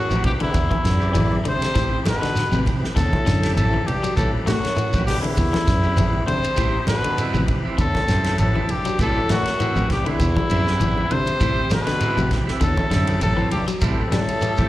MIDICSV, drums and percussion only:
0, 0, Header, 1, 3, 480
1, 0, Start_track
1, 0, Tempo, 603622
1, 1392, Time_signature, 4, 2, 24, 8
1, 11679, End_track
2, 0, Start_track
2, 0, Title_t, "Shekere"
2, 86, Note_on_c, 9, 82, 69
2, 166, Note_off_c, 9, 82, 0
2, 194, Note_on_c, 9, 82, 30
2, 274, Note_off_c, 9, 82, 0
2, 433, Note_on_c, 9, 82, 75
2, 513, Note_off_c, 9, 82, 0
2, 677, Note_on_c, 9, 82, 94
2, 756, Note_off_c, 9, 82, 0
2, 803, Note_on_c, 9, 82, 32
2, 882, Note_off_c, 9, 82, 0
2, 910, Note_on_c, 9, 82, 100
2, 990, Note_off_c, 9, 82, 0
2, 1152, Note_on_c, 9, 82, 30
2, 1232, Note_off_c, 9, 82, 0
2, 1284, Note_on_c, 9, 82, 80
2, 1363, Note_off_c, 9, 82, 0
2, 1392, Note_on_c, 9, 82, 75
2, 1472, Note_off_c, 9, 82, 0
2, 1641, Note_on_c, 9, 82, 94
2, 1720, Note_off_c, 9, 82, 0
2, 1769, Note_on_c, 9, 82, 30
2, 1848, Note_off_c, 9, 82, 0
2, 1874, Note_on_c, 9, 82, 99
2, 1953, Note_off_c, 9, 82, 0
2, 2006, Note_on_c, 9, 82, 79
2, 2085, Note_off_c, 9, 82, 0
2, 2123, Note_on_c, 9, 82, 30
2, 2202, Note_off_c, 9, 82, 0
2, 2360, Note_on_c, 9, 82, 80
2, 2439, Note_off_c, 9, 82, 0
2, 2596, Note_on_c, 9, 82, 93
2, 2676, Note_off_c, 9, 82, 0
2, 2729, Note_on_c, 9, 82, 33
2, 2808, Note_off_c, 9, 82, 0
2, 2840, Note_on_c, 9, 82, 91
2, 2919, Note_off_c, 9, 82, 0
2, 3081, Note_on_c, 9, 82, 29
2, 3161, Note_off_c, 9, 82, 0
2, 3210, Note_on_c, 9, 82, 79
2, 3289, Note_off_c, 9, 82, 0
2, 3316, Note_on_c, 9, 82, 79
2, 3395, Note_off_c, 9, 82, 0
2, 3553, Note_on_c, 9, 82, 99
2, 3632, Note_off_c, 9, 82, 0
2, 3685, Note_on_c, 9, 82, 29
2, 3764, Note_off_c, 9, 82, 0
2, 3789, Note_on_c, 9, 82, 91
2, 3868, Note_off_c, 9, 82, 0
2, 3920, Note_on_c, 9, 82, 75
2, 3999, Note_off_c, 9, 82, 0
2, 4029, Note_on_c, 9, 82, 28
2, 4108, Note_off_c, 9, 82, 0
2, 4268, Note_on_c, 9, 82, 80
2, 4348, Note_off_c, 9, 82, 0
2, 4509, Note_on_c, 9, 82, 100
2, 4589, Note_off_c, 9, 82, 0
2, 4637, Note_on_c, 9, 82, 30
2, 4716, Note_off_c, 9, 82, 0
2, 4745, Note_on_c, 9, 82, 102
2, 4825, Note_off_c, 9, 82, 0
2, 4993, Note_on_c, 9, 82, 31
2, 5073, Note_off_c, 9, 82, 0
2, 5120, Note_on_c, 9, 82, 84
2, 5200, Note_off_c, 9, 82, 0
2, 5220, Note_on_c, 9, 82, 81
2, 5300, Note_off_c, 9, 82, 0
2, 5467, Note_on_c, 9, 82, 96
2, 5547, Note_off_c, 9, 82, 0
2, 5599, Note_on_c, 9, 82, 28
2, 5679, Note_off_c, 9, 82, 0
2, 5709, Note_on_c, 9, 82, 95
2, 5788, Note_off_c, 9, 82, 0
2, 5837, Note_on_c, 9, 82, 73
2, 5917, Note_off_c, 9, 82, 0
2, 5953, Note_on_c, 9, 82, 27
2, 6032, Note_off_c, 9, 82, 0
2, 6193, Note_on_c, 9, 82, 81
2, 6273, Note_off_c, 9, 82, 0
2, 6427, Note_on_c, 9, 82, 93
2, 6507, Note_off_c, 9, 82, 0
2, 6556, Note_on_c, 9, 82, 30
2, 6636, Note_off_c, 9, 82, 0
2, 6670, Note_on_c, 9, 82, 99
2, 6749, Note_off_c, 9, 82, 0
2, 6913, Note_on_c, 9, 82, 30
2, 6993, Note_off_c, 9, 82, 0
2, 7040, Note_on_c, 9, 82, 76
2, 7120, Note_off_c, 9, 82, 0
2, 7157, Note_on_c, 9, 82, 81
2, 7236, Note_off_c, 9, 82, 0
2, 7396, Note_on_c, 9, 82, 99
2, 7475, Note_off_c, 9, 82, 0
2, 7529, Note_on_c, 9, 82, 30
2, 7608, Note_off_c, 9, 82, 0
2, 7633, Note_on_c, 9, 82, 95
2, 7713, Note_off_c, 9, 82, 0
2, 7761, Note_on_c, 9, 82, 69
2, 7841, Note_off_c, 9, 82, 0
2, 7873, Note_on_c, 9, 82, 30
2, 7952, Note_off_c, 9, 82, 0
2, 8115, Note_on_c, 9, 82, 81
2, 8194, Note_off_c, 9, 82, 0
2, 8346, Note_on_c, 9, 82, 92
2, 8426, Note_off_c, 9, 82, 0
2, 8481, Note_on_c, 9, 82, 33
2, 8560, Note_off_c, 9, 82, 0
2, 8588, Note_on_c, 9, 82, 98
2, 8668, Note_off_c, 9, 82, 0
2, 8835, Note_on_c, 9, 82, 30
2, 8914, Note_off_c, 9, 82, 0
2, 8956, Note_on_c, 9, 82, 76
2, 9035, Note_off_c, 9, 82, 0
2, 9067, Note_on_c, 9, 82, 76
2, 9146, Note_off_c, 9, 82, 0
2, 9303, Note_on_c, 9, 82, 107
2, 9383, Note_off_c, 9, 82, 0
2, 9438, Note_on_c, 9, 82, 27
2, 9517, Note_off_c, 9, 82, 0
2, 9548, Note_on_c, 9, 82, 91
2, 9627, Note_off_c, 9, 82, 0
2, 9682, Note_on_c, 9, 82, 77
2, 9762, Note_off_c, 9, 82, 0
2, 9796, Note_on_c, 9, 82, 32
2, 9875, Note_off_c, 9, 82, 0
2, 10032, Note_on_c, 9, 82, 72
2, 10111, Note_off_c, 9, 82, 0
2, 10272, Note_on_c, 9, 82, 90
2, 10352, Note_off_c, 9, 82, 0
2, 10406, Note_on_c, 9, 82, 35
2, 10486, Note_off_c, 9, 82, 0
2, 10509, Note_on_c, 9, 82, 100
2, 10588, Note_off_c, 9, 82, 0
2, 10752, Note_on_c, 9, 82, 30
2, 10831, Note_off_c, 9, 82, 0
2, 10879, Note_on_c, 9, 82, 75
2, 10959, Note_off_c, 9, 82, 0
2, 10983, Note_on_c, 9, 82, 84
2, 11062, Note_off_c, 9, 82, 0
2, 11229, Note_on_c, 9, 82, 97
2, 11309, Note_off_c, 9, 82, 0
2, 11360, Note_on_c, 9, 82, 31
2, 11440, Note_off_c, 9, 82, 0
2, 11462, Note_on_c, 9, 82, 88
2, 11541, Note_off_c, 9, 82, 0
2, 11588, Note_on_c, 9, 82, 74
2, 11668, Note_off_c, 9, 82, 0
2, 11679, End_track
3, 0, Start_track
3, 0, Title_t, "Drums"
3, 94, Note_on_c, 9, 63, 93
3, 174, Note_off_c, 9, 63, 0
3, 190, Note_on_c, 9, 53, 60
3, 193, Note_on_c, 9, 36, 66
3, 198, Note_on_c, 9, 64, 92
3, 269, Note_off_c, 9, 53, 0
3, 273, Note_off_c, 9, 36, 0
3, 277, Note_off_c, 9, 64, 0
3, 318, Note_on_c, 9, 53, 54
3, 398, Note_off_c, 9, 53, 0
3, 431, Note_on_c, 9, 53, 58
3, 433, Note_on_c, 9, 36, 77
3, 441, Note_on_c, 9, 63, 36
3, 510, Note_off_c, 9, 53, 0
3, 513, Note_off_c, 9, 36, 0
3, 521, Note_off_c, 9, 63, 0
3, 564, Note_on_c, 9, 36, 69
3, 568, Note_on_c, 9, 63, 107
3, 643, Note_off_c, 9, 36, 0
3, 648, Note_off_c, 9, 63, 0
3, 676, Note_on_c, 9, 53, 58
3, 682, Note_on_c, 9, 38, 28
3, 755, Note_off_c, 9, 53, 0
3, 762, Note_off_c, 9, 38, 0
3, 914, Note_on_c, 9, 53, 56
3, 917, Note_on_c, 9, 63, 88
3, 993, Note_off_c, 9, 53, 0
3, 997, Note_off_c, 9, 63, 0
3, 1051, Note_on_c, 9, 63, 66
3, 1130, Note_off_c, 9, 63, 0
3, 1154, Note_on_c, 9, 53, 57
3, 1164, Note_on_c, 9, 64, 85
3, 1234, Note_off_c, 9, 53, 0
3, 1243, Note_off_c, 9, 64, 0
3, 1288, Note_on_c, 9, 53, 58
3, 1295, Note_on_c, 9, 38, 33
3, 1368, Note_off_c, 9, 53, 0
3, 1374, Note_off_c, 9, 38, 0
3, 1394, Note_on_c, 9, 53, 58
3, 1397, Note_on_c, 9, 36, 88
3, 1400, Note_on_c, 9, 38, 28
3, 1403, Note_on_c, 9, 63, 39
3, 1474, Note_off_c, 9, 53, 0
3, 1476, Note_off_c, 9, 36, 0
3, 1480, Note_off_c, 9, 38, 0
3, 1483, Note_off_c, 9, 63, 0
3, 1633, Note_on_c, 9, 63, 107
3, 1639, Note_on_c, 9, 53, 65
3, 1645, Note_on_c, 9, 38, 89
3, 1713, Note_off_c, 9, 63, 0
3, 1718, Note_off_c, 9, 53, 0
3, 1725, Note_off_c, 9, 38, 0
3, 1773, Note_on_c, 9, 53, 54
3, 1779, Note_on_c, 9, 38, 29
3, 1852, Note_off_c, 9, 53, 0
3, 1859, Note_off_c, 9, 38, 0
3, 1874, Note_on_c, 9, 63, 36
3, 1885, Note_on_c, 9, 53, 54
3, 1891, Note_on_c, 9, 38, 29
3, 1954, Note_off_c, 9, 63, 0
3, 1964, Note_off_c, 9, 53, 0
3, 1971, Note_off_c, 9, 38, 0
3, 2001, Note_on_c, 9, 63, 86
3, 2081, Note_off_c, 9, 63, 0
3, 2116, Note_on_c, 9, 64, 95
3, 2120, Note_on_c, 9, 36, 68
3, 2124, Note_on_c, 9, 53, 59
3, 2195, Note_off_c, 9, 64, 0
3, 2199, Note_off_c, 9, 36, 0
3, 2204, Note_off_c, 9, 53, 0
3, 2260, Note_on_c, 9, 38, 26
3, 2340, Note_off_c, 9, 38, 0
3, 2358, Note_on_c, 9, 36, 75
3, 2359, Note_on_c, 9, 53, 58
3, 2360, Note_on_c, 9, 63, 36
3, 2360, Note_on_c, 9, 64, 84
3, 2365, Note_on_c, 9, 38, 30
3, 2437, Note_off_c, 9, 36, 0
3, 2438, Note_off_c, 9, 53, 0
3, 2439, Note_off_c, 9, 63, 0
3, 2439, Note_off_c, 9, 64, 0
3, 2445, Note_off_c, 9, 38, 0
3, 2489, Note_on_c, 9, 36, 69
3, 2490, Note_on_c, 9, 63, 101
3, 2568, Note_off_c, 9, 36, 0
3, 2570, Note_off_c, 9, 63, 0
3, 2602, Note_on_c, 9, 53, 51
3, 2608, Note_on_c, 9, 38, 26
3, 2681, Note_off_c, 9, 53, 0
3, 2688, Note_off_c, 9, 38, 0
3, 2730, Note_on_c, 9, 53, 58
3, 2736, Note_on_c, 9, 38, 31
3, 2809, Note_off_c, 9, 53, 0
3, 2816, Note_off_c, 9, 38, 0
3, 2842, Note_on_c, 9, 53, 51
3, 2842, Note_on_c, 9, 63, 86
3, 2921, Note_off_c, 9, 53, 0
3, 2921, Note_off_c, 9, 63, 0
3, 2968, Note_on_c, 9, 63, 69
3, 3047, Note_off_c, 9, 63, 0
3, 3084, Note_on_c, 9, 64, 86
3, 3085, Note_on_c, 9, 53, 53
3, 3163, Note_off_c, 9, 64, 0
3, 3164, Note_off_c, 9, 53, 0
3, 3212, Note_on_c, 9, 53, 49
3, 3292, Note_off_c, 9, 53, 0
3, 3318, Note_on_c, 9, 36, 92
3, 3320, Note_on_c, 9, 63, 38
3, 3320, Note_on_c, 9, 64, 74
3, 3322, Note_on_c, 9, 53, 54
3, 3398, Note_off_c, 9, 36, 0
3, 3400, Note_off_c, 9, 63, 0
3, 3400, Note_off_c, 9, 64, 0
3, 3402, Note_off_c, 9, 53, 0
3, 3558, Note_on_c, 9, 63, 104
3, 3562, Note_on_c, 9, 53, 57
3, 3568, Note_on_c, 9, 38, 77
3, 3637, Note_off_c, 9, 63, 0
3, 3642, Note_off_c, 9, 53, 0
3, 3648, Note_off_c, 9, 38, 0
3, 3695, Note_on_c, 9, 53, 54
3, 3701, Note_on_c, 9, 38, 29
3, 3774, Note_off_c, 9, 53, 0
3, 3780, Note_off_c, 9, 38, 0
3, 3799, Note_on_c, 9, 63, 33
3, 3803, Note_on_c, 9, 53, 45
3, 3879, Note_off_c, 9, 63, 0
3, 3883, Note_off_c, 9, 53, 0
3, 3926, Note_on_c, 9, 36, 76
3, 3929, Note_on_c, 9, 63, 92
3, 4006, Note_off_c, 9, 36, 0
3, 4009, Note_off_c, 9, 63, 0
3, 4032, Note_on_c, 9, 64, 82
3, 4039, Note_on_c, 9, 46, 69
3, 4046, Note_on_c, 9, 38, 30
3, 4112, Note_off_c, 9, 64, 0
3, 4119, Note_off_c, 9, 46, 0
3, 4125, Note_off_c, 9, 38, 0
3, 4168, Note_on_c, 9, 53, 50
3, 4248, Note_off_c, 9, 53, 0
3, 4274, Note_on_c, 9, 36, 71
3, 4275, Note_on_c, 9, 53, 57
3, 4277, Note_on_c, 9, 63, 39
3, 4277, Note_on_c, 9, 64, 82
3, 4353, Note_off_c, 9, 36, 0
3, 4355, Note_off_c, 9, 53, 0
3, 4356, Note_off_c, 9, 63, 0
3, 4356, Note_off_c, 9, 64, 0
3, 4404, Note_on_c, 9, 63, 99
3, 4410, Note_on_c, 9, 38, 30
3, 4484, Note_off_c, 9, 63, 0
3, 4490, Note_off_c, 9, 38, 0
3, 4514, Note_on_c, 9, 36, 73
3, 4514, Note_on_c, 9, 53, 55
3, 4520, Note_on_c, 9, 38, 29
3, 4593, Note_off_c, 9, 36, 0
3, 4593, Note_off_c, 9, 53, 0
3, 4600, Note_off_c, 9, 38, 0
3, 4746, Note_on_c, 9, 63, 81
3, 4756, Note_on_c, 9, 53, 56
3, 4825, Note_off_c, 9, 63, 0
3, 4835, Note_off_c, 9, 53, 0
3, 4876, Note_on_c, 9, 63, 68
3, 4956, Note_off_c, 9, 63, 0
3, 4990, Note_on_c, 9, 63, 74
3, 4990, Note_on_c, 9, 64, 84
3, 4994, Note_on_c, 9, 53, 59
3, 5070, Note_off_c, 9, 63, 0
3, 5070, Note_off_c, 9, 64, 0
3, 5074, Note_off_c, 9, 53, 0
3, 5125, Note_on_c, 9, 53, 53
3, 5205, Note_off_c, 9, 53, 0
3, 5227, Note_on_c, 9, 63, 33
3, 5228, Note_on_c, 9, 53, 59
3, 5232, Note_on_c, 9, 36, 87
3, 5306, Note_off_c, 9, 63, 0
3, 5308, Note_off_c, 9, 53, 0
3, 5312, Note_off_c, 9, 36, 0
3, 5463, Note_on_c, 9, 63, 104
3, 5467, Note_on_c, 9, 53, 61
3, 5474, Note_on_c, 9, 38, 79
3, 5542, Note_off_c, 9, 63, 0
3, 5547, Note_off_c, 9, 53, 0
3, 5553, Note_off_c, 9, 38, 0
3, 5600, Note_on_c, 9, 53, 58
3, 5679, Note_off_c, 9, 53, 0
3, 5706, Note_on_c, 9, 63, 36
3, 5710, Note_on_c, 9, 53, 56
3, 5785, Note_off_c, 9, 63, 0
3, 5789, Note_off_c, 9, 53, 0
3, 5841, Note_on_c, 9, 63, 89
3, 5921, Note_off_c, 9, 63, 0
3, 5949, Note_on_c, 9, 53, 56
3, 5949, Note_on_c, 9, 64, 79
3, 5952, Note_on_c, 9, 36, 70
3, 6028, Note_off_c, 9, 53, 0
3, 6029, Note_off_c, 9, 64, 0
3, 6032, Note_off_c, 9, 36, 0
3, 6189, Note_on_c, 9, 53, 61
3, 6191, Note_on_c, 9, 36, 75
3, 6193, Note_on_c, 9, 63, 38
3, 6193, Note_on_c, 9, 64, 73
3, 6269, Note_off_c, 9, 53, 0
3, 6271, Note_off_c, 9, 36, 0
3, 6272, Note_off_c, 9, 63, 0
3, 6272, Note_off_c, 9, 64, 0
3, 6320, Note_on_c, 9, 63, 111
3, 6321, Note_on_c, 9, 36, 65
3, 6321, Note_on_c, 9, 38, 29
3, 6400, Note_off_c, 9, 36, 0
3, 6400, Note_off_c, 9, 63, 0
3, 6401, Note_off_c, 9, 38, 0
3, 6428, Note_on_c, 9, 53, 51
3, 6434, Note_on_c, 9, 38, 30
3, 6507, Note_off_c, 9, 53, 0
3, 6513, Note_off_c, 9, 38, 0
3, 6556, Note_on_c, 9, 53, 54
3, 6562, Note_on_c, 9, 38, 33
3, 6635, Note_off_c, 9, 53, 0
3, 6641, Note_off_c, 9, 38, 0
3, 6665, Note_on_c, 9, 53, 53
3, 6671, Note_on_c, 9, 63, 94
3, 6744, Note_off_c, 9, 53, 0
3, 6751, Note_off_c, 9, 63, 0
3, 6803, Note_on_c, 9, 63, 70
3, 6882, Note_off_c, 9, 63, 0
3, 6909, Note_on_c, 9, 53, 56
3, 6909, Note_on_c, 9, 63, 70
3, 6909, Note_on_c, 9, 64, 77
3, 6988, Note_off_c, 9, 53, 0
3, 6989, Note_off_c, 9, 63, 0
3, 6989, Note_off_c, 9, 64, 0
3, 7037, Note_on_c, 9, 53, 51
3, 7117, Note_off_c, 9, 53, 0
3, 7147, Note_on_c, 9, 53, 49
3, 7150, Note_on_c, 9, 36, 96
3, 7157, Note_on_c, 9, 63, 36
3, 7157, Note_on_c, 9, 64, 78
3, 7227, Note_off_c, 9, 53, 0
3, 7230, Note_off_c, 9, 36, 0
3, 7237, Note_off_c, 9, 63, 0
3, 7237, Note_off_c, 9, 64, 0
3, 7388, Note_on_c, 9, 53, 54
3, 7395, Note_on_c, 9, 38, 84
3, 7397, Note_on_c, 9, 63, 111
3, 7468, Note_off_c, 9, 53, 0
3, 7474, Note_off_c, 9, 38, 0
3, 7476, Note_off_c, 9, 63, 0
3, 7519, Note_on_c, 9, 53, 53
3, 7525, Note_on_c, 9, 38, 28
3, 7598, Note_off_c, 9, 53, 0
3, 7605, Note_off_c, 9, 38, 0
3, 7632, Note_on_c, 9, 53, 49
3, 7639, Note_on_c, 9, 63, 37
3, 7712, Note_off_c, 9, 53, 0
3, 7718, Note_off_c, 9, 63, 0
3, 7766, Note_on_c, 9, 63, 86
3, 7846, Note_off_c, 9, 63, 0
3, 7871, Note_on_c, 9, 53, 54
3, 7872, Note_on_c, 9, 36, 69
3, 7877, Note_on_c, 9, 38, 32
3, 7877, Note_on_c, 9, 64, 83
3, 7950, Note_off_c, 9, 53, 0
3, 7951, Note_off_c, 9, 36, 0
3, 7957, Note_off_c, 9, 38, 0
3, 7957, Note_off_c, 9, 64, 0
3, 8001, Note_on_c, 9, 53, 47
3, 8081, Note_off_c, 9, 53, 0
3, 8107, Note_on_c, 9, 53, 57
3, 8110, Note_on_c, 9, 36, 76
3, 8120, Note_on_c, 9, 63, 38
3, 8120, Note_on_c, 9, 64, 75
3, 8187, Note_off_c, 9, 53, 0
3, 8190, Note_off_c, 9, 36, 0
3, 8200, Note_off_c, 9, 63, 0
3, 8200, Note_off_c, 9, 64, 0
3, 8241, Note_on_c, 9, 36, 68
3, 8243, Note_on_c, 9, 63, 104
3, 8320, Note_off_c, 9, 36, 0
3, 8322, Note_off_c, 9, 63, 0
3, 8356, Note_on_c, 9, 53, 55
3, 8436, Note_off_c, 9, 53, 0
3, 8487, Note_on_c, 9, 38, 28
3, 8567, Note_off_c, 9, 38, 0
3, 8594, Note_on_c, 9, 53, 50
3, 8594, Note_on_c, 9, 63, 84
3, 8673, Note_off_c, 9, 63, 0
3, 8674, Note_off_c, 9, 53, 0
3, 8727, Note_on_c, 9, 63, 69
3, 8807, Note_off_c, 9, 63, 0
3, 8832, Note_on_c, 9, 53, 51
3, 8835, Note_on_c, 9, 64, 87
3, 8912, Note_off_c, 9, 53, 0
3, 8914, Note_off_c, 9, 64, 0
3, 8964, Note_on_c, 9, 53, 55
3, 9043, Note_off_c, 9, 53, 0
3, 9071, Note_on_c, 9, 36, 96
3, 9074, Note_on_c, 9, 53, 58
3, 9079, Note_on_c, 9, 63, 38
3, 9079, Note_on_c, 9, 64, 75
3, 9151, Note_off_c, 9, 36, 0
3, 9153, Note_off_c, 9, 53, 0
3, 9158, Note_off_c, 9, 63, 0
3, 9158, Note_off_c, 9, 64, 0
3, 9312, Note_on_c, 9, 53, 68
3, 9315, Note_on_c, 9, 63, 108
3, 9318, Note_on_c, 9, 38, 83
3, 9391, Note_off_c, 9, 53, 0
3, 9394, Note_off_c, 9, 63, 0
3, 9398, Note_off_c, 9, 38, 0
3, 9437, Note_on_c, 9, 53, 60
3, 9443, Note_on_c, 9, 38, 30
3, 9516, Note_off_c, 9, 53, 0
3, 9523, Note_off_c, 9, 38, 0
3, 9546, Note_on_c, 9, 53, 57
3, 9553, Note_on_c, 9, 63, 35
3, 9626, Note_off_c, 9, 53, 0
3, 9633, Note_off_c, 9, 63, 0
3, 9682, Note_on_c, 9, 63, 84
3, 9762, Note_off_c, 9, 63, 0
3, 9788, Note_on_c, 9, 36, 70
3, 9788, Note_on_c, 9, 53, 54
3, 9793, Note_on_c, 9, 64, 79
3, 9794, Note_on_c, 9, 38, 32
3, 9867, Note_off_c, 9, 53, 0
3, 9868, Note_off_c, 9, 36, 0
3, 9873, Note_off_c, 9, 64, 0
3, 9874, Note_off_c, 9, 38, 0
3, 9924, Note_on_c, 9, 38, 29
3, 10003, Note_off_c, 9, 38, 0
3, 10024, Note_on_c, 9, 53, 63
3, 10028, Note_on_c, 9, 36, 80
3, 10104, Note_off_c, 9, 53, 0
3, 10107, Note_off_c, 9, 36, 0
3, 10157, Note_on_c, 9, 36, 71
3, 10158, Note_on_c, 9, 63, 106
3, 10237, Note_off_c, 9, 36, 0
3, 10237, Note_off_c, 9, 63, 0
3, 10267, Note_on_c, 9, 53, 55
3, 10274, Note_on_c, 9, 38, 29
3, 10347, Note_off_c, 9, 53, 0
3, 10353, Note_off_c, 9, 38, 0
3, 10395, Note_on_c, 9, 53, 62
3, 10475, Note_off_c, 9, 53, 0
3, 10506, Note_on_c, 9, 53, 56
3, 10512, Note_on_c, 9, 63, 98
3, 10585, Note_off_c, 9, 53, 0
3, 10591, Note_off_c, 9, 63, 0
3, 10644, Note_on_c, 9, 63, 69
3, 10724, Note_off_c, 9, 63, 0
3, 10746, Note_on_c, 9, 53, 57
3, 10754, Note_on_c, 9, 63, 74
3, 10754, Note_on_c, 9, 64, 82
3, 10825, Note_off_c, 9, 53, 0
3, 10834, Note_off_c, 9, 63, 0
3, 10834, Note_off_c, 9, 64, 0
3, 10876, Note_on_c, 9, 53, 52
3, 10955, Note_off_c, 9, 53, 0
3, 10985, Note_on_c, 9, 53, 53
3, 10988, Note_on_c, 9, 36, 95
3, 10995, Note_on_c, 9, 63, 37
3, 10995, Note_on_c, 9, 64, 77
3, 11065, Note_off_c, 9, 53, 0
3, 11068, Note_off_c, 9, 36, 0
3, 11075, Note_off_c, 9, 63, 0
3, 11075, Note_off_c, 9, 64, 0
3, 11229, Note_on_c, 9, 53, 61
3, 11235, Note_on_c, 9, 38, 81
3, 11237, Note_on_c, 9, 63, 108
3, 11308, Note_off_c, 9, 53, 0
3, 11315, Note_off_c, 9, 38, 0
3, 11317, Note_off_c, 9, 63, 0
3, 11360, Note_on_c, 9, 53, 57
3, 11439, Note_off_c, 9, 53, 0
3, 11470, Note_on_c, 9, 53, 47
3, 11478, Note_on_c, 9, 63, 37
3, 11549, Note_off_c, 9, 53, 0
3, 11557, Note_off_c, 9, 63, 0
3, 11598, Note_on_c, 9, 36, 79
3, 11598, Note_on_c, 9, 63, 84
3, 11677, Note_off_c, 9, 63, 0
3, 11678, Note_off_c, 9, 36, 0
3, 11679, End_track
0, 0, End_of_file